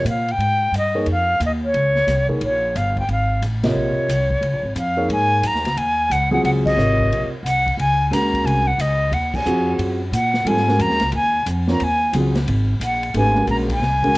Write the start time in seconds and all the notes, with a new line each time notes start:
0.05 A#2, hi-hat pedal, ride
0.09 F5
0.28 G5, ride
0.38 G#2, ride
0.72 G2, hi-hat pedal, ride
0.78 D#5
0.95 A#3 D#4 G#4 C#5
1.06 F2, ride
1.11 F5
1.40 D#2, hi-hat pedal, ride
1.46 D#5
1.65 C#5
1.74 C#2, ride
1.95 snare
2.07 C2, snare, hi-hat pedal, ride
2.29 A#3 D#4 G#4 C#5, kick
2.41 A#1 C#5, ride
2.75 G1 F5, hi-hat pedal, ride
2.96 G5, kick, ride
3.09 G#1 F5, ride
3.42 A1, hi-hat pedal, ride
3.63 C3 F4 A#4 C#5 D#5, snare, ride
3.75 A#1
3.97 muted upright bass stroke
4.08 C2, hi-hat pedal, ride
4.30 kick
4.41 C#2, ride
4.53 A#1
4.63 G#1
4.75 F2 F5, hi-hat pedal, ride
4.97 A#3 D#4 G#4 C#5
5.09 G#2 G#5, ride
5.42 F#2, hi-hat pedal, ride
5.47 A#5
5.54 D#2, snare
5.65 C#2, snare, ride
5.77 D#2 G#5, ride
6.10 C#2 F#5, hi-hat pedal, ride
6.31 F#3 C4 F4 G#4 F#5
6.44 C#2 F#5, ride
6.66 D#5, kick, crash
6.77 G#1 C3 F4 A#4 C#5, hi-hat pedal
7.00 kick
7.09 A#1, ride
7.30 muted upright bass stroke
7.43 C2 F#5, hi-hat pedal, ride
7.66 kick, ride
7.77 C#2 G#5, ride
8.11 D#2 G#3 C#4 F#4 A#4 A#5, hi-hat pedal, ride
8.34 kick, ride
8.44 C2 G#5, ride
8.67 F#5
8.78 C#2 D#5, hi-hat pedal, ride
9.11 D#2 F#5, ride
9.34 G#5, kick, crash
9.45 F2 C4 F4 F#4 G#4, hi-hat pedal
9.78 F#2, ride
10.12 A#2 F#5, hi-hat pedal, ride
10.34 snare
10.45 G#2 G3 C4 F4 A4 G#5, ride
10.57 snare
10.69 G#3 C#4 F#4 A#4, snare
10.79 F2 A#5, hi-hat pedal, ride
10.90 D#2, snare
11.00 C#2, snare, ride
11.12 D#2 G#5, ride
11.46 F2, hi-hat pedal, ride
11.68 C4 F4 A#4 C#5, snare
11.72 A#5
11.80 D#2 G#5, ride
12.13 C#2 F#3 C4 F4 G#4, hi-hat pedal, ride
12.35 snare, ride
12.47 G#1, ride
12.80 A#1, hi-hat pedal, ride
12.84 F#5
13.03 ride
13.14 G#1 A3 D4 G4 B4 G#5, ride
13.35 G#3 C#4 F#4 A#4, snare
13.47 A#1 A#5, hi-hat pedal, ride
13.69 G#5, kick, ride
13.80 C2, snare
14.03 G#3 C#4 F#4 A#4, kick, ride
14.14 C#2